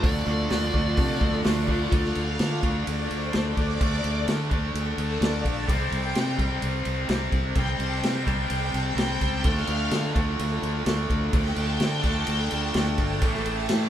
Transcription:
0.02 D2 D3 F3 A3 D4 F4 A4 D5, kick, open hi-hat
0.26 D2 D3 F3 A3 D4 F4
0.30 A4
0.39 F4 A4
0.50 D2 D3 F3 A3 D4 F4 A4, snare, open hi-hat
0.62 D4 F4 A4
0.73 D2 D3 F3 A3 D4 F4, kick
0.77 A4
0.86 D4 F4 A4
0.96 C3 D3 A3 D4, kick, open hi-hat
1.08 D4 F4 A4
1.20 D2 D3 A3 D4, kick
1.32 D4 F4 A4
1.43 D2 D3 F3 A3 D4 F4 A4, snare, open hi-hat
1.67 D3 F3 A3 D4 F4 A4, kick
1.90 D2 D3 A3 D4, kick, ride
1.94 F5
2.04 snare
2.15 D2, ride
2.39 D3, snare, ride
2.61 D2 A3 D4, kick, ride
2.65 D3
2.87 D2 D5, ride
3.10 D2 C5, ride
3.32 D2 D3 A3 D4, snare, ride
3.37 D5
3.57 D2, kick, ride
3.79 D2 D3 A3 D4, kick, ride
3.93 snare
4.04 D2, ride
4.28 D3, snare, ride
4.50 D2 D3 A3 D4, kick, ride
4.74 D2, ride
4.98 D2 A4, ride
5.20 D2 D3 A3 D4 D5, snare, ride
5.35 F5
5.45 A#1 A5, kick, ride
5.58 C6
5.67 C2 C3 G3 C4, kick, ride
5.71 G5
5.92 C2, ride
6.15 C3, snare, ride
6.36 C2 C3 G3 C4, kick, ride
6.62 C2, ride
6.85 C2, ride
7.07 C2 C3 G3 C4, snare, ride
7.32 C2, kick, ride
7.55 C2 C3 G3 C4 G5, kick, ride
7.72 A5
7.79 C2, ride
7.88 G5
8.03 C3 G5, snare, ride
8.18 A5
8.25 C2 C3 G3 C4, kick, ride
8.35 G5
8.50 C2 G5, ride
8.69 A5
8.74 C2, ride
8.85 G5
8.96 C2 C3 G3, snare, ride
9.00 C4 G5
9.16 A5
9.21 C#2, kick, ride
9.32 G5
9.42 D2 D3 F3 A3 D4 F4 A4, kick, ride
9.47 D4 F5
9.56 D4 F4 A4, snare
9.66 D2 F3 D4 F4 A4, ride
9.90 D3 F3 D4 F4 A4, snare, ride
10.13 D2 D3 F3 A3 D4 F4 A4, kick, ride
10.27 F4 A4
10.39 D2, ride
10.49 D4 F4 A4
10.60 D2 F3 D4 F4 A4, ride
10.72 D4 F4 A4
10.84 D2 D3 F3 A3 D4 F4 A4, snare, ride
10.89 D4
11.08 D2 F3 D4 F4, kick, ride
11.31 D2 D3 F3 A3 D4 F4 A4, kick, ride
11.35 G5
11.44 D4 F4 A4, snare
11.51 A5
11.55 D2 F3 D4 F4 A4, ride
11.66 G5
11.80 D3 F3 D4 F4 A4 G5, snare, ride
11.98 A5
12.03 D2 D3 F3 A3 D4 F4 A4, kick, ride
12.14 F4 G5
12.27 D2 G5, ride
12.40 D4 F4 A4
12.46 A5
12.51 D2 F3 D4 F4, ride
12.55 A4
12.61 D4 F4 A4 G5
12.74 D2 D3 F3 A3 D4 F4 A4 G5, snare, ride
12.93 A5
12.97 G1 F3 D4 F4 A4, kick, ride
13.09 G5
13.20 A1 A2 E3 A3 C#4 E4 A4, kick, ride
13.25 A5
13.32 A3 C#4 E4 A4, snare
13.44 A1 A3 C#4 E4 A4, ride
13.68 A2 E3 A3 C#4 E4 A4, snare, ride

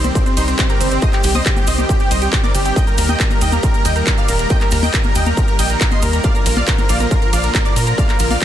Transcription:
Already playing: C2
0.04 C4 C5, closed hi-hat, high conga, cabasa
0.15 D#3 G3 C4 G4 C5, kick, closed hi-hat, cabasa
0.26 D#3 G3 C4 G4 C5, closed hi-hat, cabasa
0.37 C2 D#4 C5 C6, open hi-hat, ride, cabasa
0.48 D#3 G3 C4 G4 C5, closed hi-hat, cabasa
0.58 C4 C5, kick, clap, closed hi-hat, cabasa
0.69 D#3 G3 C4 G4 A#4 A#5, closed hi-hat, cabasa
0.80 G1 C4 C5, open hi-hat, ride, cabasa
0.91 D#3 G3 C4 G4 C5, closed hi-hat, cabasa
1.02 D#3 G3 C4 G4 C5 D#5 D#6, kick, closed hi-hat, cabasa
1.13 G4 G5, clap, closed hi-hat, cabasa
1.23 C2 D#3 G3 C4 G4 G5, open hi-hat, ride, cabasa
1.34 C5 D#5 D#6, open hi-hat, high conga, cabasa
1.46 D#3 G3 C4 G4 G5, kick, clap, closed hi-hat, cabasa
1.57 G4 G5, closed hi-hat, high conga, cabasa
1.67 C2 D#3 G3 C4 G4 C5 D#5 D#6, open hi-hat, ride, cabasa
1.78 G4 G5, closed hi-hat, high conga, cabasa
1.89 D#3 G3 C4 G4 G5, kick, closed hi-hat, cabasa
2.00 D#3 G3 C4 G4 G5, closed hi-hat, cabasa
2.11 C2 C5 D#5 D#6, open hi-hat, ride, cabasa
2.22 D#3 G3 C4 G4 G5, closed hi-hat, cabasa
2.32 G4 G5, kick, clap, closed hi-hat, cabasa
2.43 D#3 G3 C4 G4 A#4 D5 D6, closed hi-hat, high conga, cabasa
2.54 G1 G4 G5, open hi-hat, ride, cabasa
2.65 D#3 G3 C4 G4 G5, closed hi-hat, cabasa
2.76 D#3 G3 A#3 G4 D#5 G5 G6, kick, closed hi-hat, cabasa
2.87 A#4 A#5, closed hi-hat, cabasa
2.98 D#2 D#3 G3 A#3 G4 A#4 A#5, open hi-hat, ride, cabasa
3.09 D#5 G5 G6, closed hi-hat, high conga, cabasa
3.20 D#3 G3 A#3 G4 A#4 A#5, kick, clap, closed hi-hat, cabasa
3.30 A#4 A#5, closed hi-hat, high conga, cabasa
3.41 D#2 D#3 G3 A#3 G4 D#5 G5 G6, open hi-hat, ride, cabasa
3.52 A#4 A#5, closed hi-hat, high conga, cabasa
3.63 D#3 G3 A#3 G4 A#4 A#5, kick, closed hi-hat, cabasa
3.74 D#3 G3 A#3 G4 A#4 A#5, closed hi-hat, cabasa
3.85 D#2 D#5 G5 G6, open hi-hat, ride, cabasa
3.96 D#3 G3 A#3 G4 A#4 A#5, closed hi-hat, cabasa
4.07 A#4 A#5, kick, clap, closed hi-hat, cabasa
4.17 D#3 G3 A#3 G4 D5 F5 F6, closed hi-hat, cabasa
4.28 D#1 A#4 A#5, open hi-hat, ride, cabasa
4.39 D#3 G3 A#3 G4 A#4 A#5, closed hi-hat, cabasa
4.50 D#3 G3 A#3 G4 D#5 G5 G6, kick, closed hi-hat, cabasa
4.61 A#4 A#5, clap, closed hi-hat, cabasa
4.71 D#2 D#3 G3 A#3 G4 A#4 A#5, open hi-hat, ride, cabasa
4.83 D#5 G5 G6, open hi-hat, high conga, cabasa
4.93 D#3 G3 A#3 G4 A#4 A#5, kick, clap, closed hi-hat, cabasa
5.03 A#4 A#5, closed hi-hat, high conga, cabasa
5.15 D#2 D#3 G3 A#3 G4 D#5 G5 G6, open hi-hat, ride, cabasa
5.26 A#4 A#5, closed hi-hat, high conga, cabasa
5.37 D#3 G3 A#3 G4 A#4 A#5, kick, closed hi-hat, cabasa
5.48 D#3 G3 A#3 G4 A#4 A#5, closed hi-hat, cabasa
5.59 A#1 D#5 G5 G6, open hi-hat, ride, cabasa
5.70 D#3 G3 A#3 G4 A#4 A#5, closed hi-hat, cabasa
5.81 A#4 A#5, kick, clap, closed hi-hat, cabasa
5.91 D#3 G3 A#3 G4 D#5 C6 C7, closed hi-hat, high conga, cabasa
6.02 D#2 A#4 A#5, open hi-hat, ride, cabasa
6.13 D#3 G3 A#3 G4 A#4 A#5, closed hi-hat, cabasa
6.24 D3 F3 A#3 F4 D5 F5 F6, kick, closed hi-hat, cabasa
6.35 A#4 A#5, closed hi-hat, cabasa
6.46 A#1 D3 F3 A#3 F4 A#4 A#5, open hi-hat, ride, cabasa
6.57 D5 F5 F6, closed hi-hat, high conga, cabasa
6.67 D3 F3 A#3 F4 A#4 A#5, kick, clap, closed hi-hat, cabasa
6.78 A#4 A#5, closed hi-hat, high conga, cabasa
6.89 A#1 D3 F3 A#3 F4 D5 F5 F6, open hi-hat, ride, cabasa
7.00 A#4 A#5, closed hi-hat, high conga, cabasa
7.11 D3 F3 A#3 F4 A#4 A#5, kick, closed hi-hat, cabasa
7.22 D3 F3 A#3 F4 A#4 A#5, closed hi-hat, cabasa
7.33 A#1 D5 F5 F6, open hi-hat, ride, cabasa
7.43 D3 F3 A#3 F4 A#4 A#5, closed hi-hat, cabasa
7.54 A#4 A#5, kick, clap, closed hi-hat, cabasa
7.65 D3 F3 A#3 F4 A#4 D5 D6, closed hi-hat, cabasa
7.76 A#2 A#4 A#5, open hi-hat, ride, cabasa
7.87 D3 F3 A#3 F4 A#4 A#5, closed hi-hat, cabasa
7.98 D3 F3 A#3 F4 D5 F5 F6, kick, closed hi-hat, cabasa
8.09 A#4 A#5, clap, closed hi-hat, cabasa
8.19 A#1 D3 F3 A#3 F4 A#4 A#5, open hi-hat, ride, cabasa
8.31 D5 F5 F6, open hi-hat, high conga, cabasa
8.41 D3 F3 A#3 F4 A#5, kick, clap, closed hi-hat, cabasa

